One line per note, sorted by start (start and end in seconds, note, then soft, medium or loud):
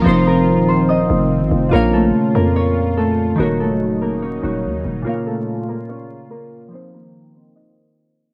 0.00 1.67 F3 medium
0.00 1.68 C4 medium
0.00 1.69 F4 medium
0.00 0.27 A#4 medium
0.00 0.11 C#5 medium
0.00 0.26 A#5 loud
0.00 0.11 C#6 medium
0.05 0.59 F1 loud
0.05 1.71 D#3 medium
0.05 1.71 C4 medium
0.05 1.69 D#4 medium
0.05 0.69 C5 medium
0.05 1.71 C5 medium
0.05 0.68 C6 loud
0.27 1.72 A#4 medium
0.27 1.67 A#5 medium
0.58 1.07 D#1 loud
0.68 2.62 C5 medium
0.68 1.99 C6 medium
0.89 2.68 D#5 medium
0.89 2.06 D#6 medium
1.10 1.43 F1 loud
1.41 1.51 A1 loud
1.51 1.72 F1 loud
1.69 2.12 A#1 loud
1.69 3.34 A#2 medium
1.69 3.37 A#2 medium
1.69 3.38 C#3 medium
1.69 3.35 F4 medium
1.69 3.37 F4 medium
1.69 1.99 A#4 loud
1.73 1.99 A#3 medium
1.73 3.36 C#5 medium
1.73 3.37 F5 medium
1.93 2.41 A3 medium
1.93 2.41 A4 medium
2.35 3.35 F2 loud
2.35 3.03 A#3 medium
2.35 3.03 A#4 medium
2.56 4.23 C#4 medium
2.56 4.22 C#5 medium
2.97 3.46 A3 medium
2.97 3.46 A4 medium
3.36 4.39 D#1 loud
3.36 6.69 C#3 medium
3.36 4.40 D#3 medium
3.36 5.04 F#3 medium
3.36 4.41 D#4 medium
3.36 5.04 D#4 medium
3.36 3.66 A#4 loud
3.40 3.66 A#3 medium
3.40 4.42 F#4 medium
3.40 4.43 C#5 medium
3.60 4.07 A3 medium
3.60 4.07 A4 medium
4.01 5.06 A#3 medium
4.01 5.06 A#4 medium
4.22 5.89 C#4 medium
4.22 5.89 C#5 medium
4.42 4.66 D#1 loud
4.42 5.05 D#3 medium
4.42 5.06 D#4 medium
4.42 5.06 F#4 medium
4.42 5.06 C#5 medium
4.64 4.84 D#2 loud
4.85 5.05 D#1 loud
5.02 6.67 A#2 medium
5.02 6.71 A#2 medium
5.02 6.69 F4 medium
5.02 8.34 F4 medium
5.02 5.32 A#4 loud
5.07 5.32 A#3 medium
5.07 6.70 C#5 medium
5.07 6.71 F5 medium
5.26 5.74 A3 medium
5.26 5.74 A4 medium
5.68 6.31 A#3 medium
5.68 6.30 A#4 medium
5.89 6.78 C#4 medium
5.89 6.78 C#5 medium
6.31 6.94 A#3 medium
6.31 6.93 A#4 loud
6.69 8.34 D#3 medium
6.69 8.34 F3 medium
6.69 8.34 C4 medium
6.69 7.35 C5 medium
6.73 7.36 C4 medium
6.73 8.34 D#4 medium
6.73 8.34 C5 medium
6.94 8.34 A#3 medium
6.94 8.34 A#4 medium
7.35 8.34 C4 medium
7.35 8.34 C5 medium
7.56 8.34 D#4 medium
7.56 8.34 D#5 medium